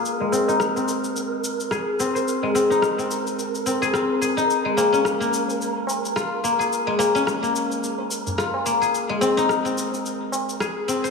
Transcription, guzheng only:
X:1
M:4/4
L:1/16
Q:"Swing 16ths" 1/4=108
K:Abmix
V:1 name="Guzheng"
z A, C E2 C4 z3 A2 C c | z A, C E2 C4 z C A C z A E | z A, B, D2 B,4 z3 F2 B, A | z A, B, D2 B,4 z3 F2 B, A |
z A, C E2 C4 z3 A2 C c |]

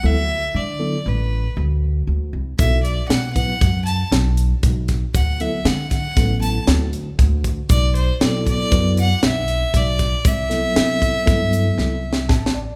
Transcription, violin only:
X:1
M:5/4
L:1/8
Q:1/4=118
K:Dmix
V:1 name="Violin"
e2 d2 B2 z4 | e d f f2 a z4 | f e f f2 a z4 | d c d d2 f e2 d2 |
e8 z2 |]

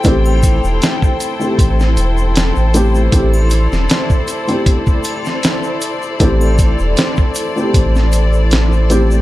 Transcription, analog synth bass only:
X:1
M:4/4
L:1/16
Q:"Swing 16ths" 1/4=78
K:Am
V:1 name="Analog synth bass" clef=bass
A,,,3 E,,, z4 A,,,2 E,,,3 A,,,3 | A,,,3 E,,, z12 | A,,,3 E,,, z4 A,,,8 |]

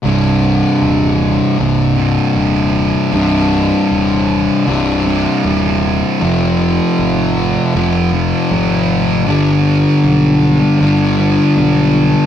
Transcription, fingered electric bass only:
X:1
M:4/4
L:1/8
Q:1/4=78
K:Cm
V:1 name="Fingered electric bass" clef=bass
C,,,2 E,,,2 C,,,2 E,,,2 | C,,,2 E,,,2 C,,,2 E,,,2 | F,,,2 A,,,2 F,,,2 A,,,2 | G,,,2 =B,,,2 G,,,2 B,,,2 |]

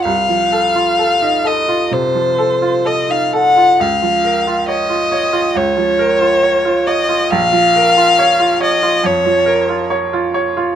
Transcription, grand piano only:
X:1
M:4/4
L:1/16
Q:1/4=68
K:Fphr
V:1 name="Grand piano"
C,, F, =A F A E A F C, F, A F A E A F | D,, F, B F d F d F D,, F, B F d F d F | B,,, F, B F d F d F F,, F, B F d F d F |]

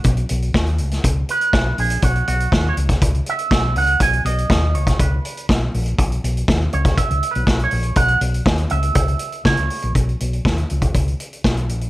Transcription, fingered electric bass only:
X:1
M:4/4
L:1/16
Q:1/4=121
K:B
V:1 name="Fingered electric bass" clef=bass
B,,,2 B,,,2 D,,2 C,,2 C,,2 z2 B,,,2 A,,,2 | B,,,2 B,,,2 D,,2 C,,2 C,,2 z2 B,,,2 C,,2 | B,,,2 B,,,2 D,,2 C,,2 C,,2 z2 B,,,2 A,,,2 | B,,,2 B,,,2 D,,2 C,,2 z C,, z B,,, B,,,2 A,,,2 |
B,,,2 B,,,2 D,,2 C,,2 C,,2 z2 C, C,, z A,,, | B,,,2 B,,,2 D,,2 C,,2 C,,2 z2 B,,,2 A,,,2 |]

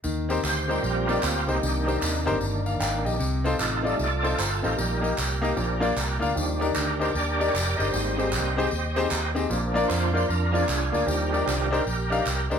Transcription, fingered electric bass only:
X:1
M:4/4
L:1/8
Q:"Swing" 1/4=152
K:Eb
V:1 name="Fingered electric bass" clef=bass
E,,2 D,,2 B,,,2 D,, C,, | C,,2 E,, A,,, G,,,2 A,,, B,,, | C,,2 =A,,,2 C,,2 G,,, A,,, | B,,,2 C,,2 B,,,2 C,, D,, |
E,,2 D,,2 E,,2 F,,, G,,, | A,,,2 C,,2 E,,2 E,,2 | B,,,2 F,,2 F,,2 C,, D,, | E,,2 C,,2 B,,,2 C,, D,, |]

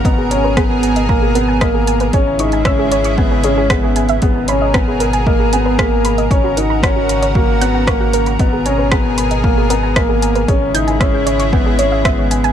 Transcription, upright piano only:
X:1
M:4/4
L:1/8
Q:1/4=115
K:G#m
V:1 name="Upright piano"
B, C B,2 A, B, A,2 | C D C2 B, C B,2 | B, C B,2 A, B, A,2 | C D C2 A, B, A,2 |
B, C B,2 A, B, A,2 | C D C2 B, C B,2 |]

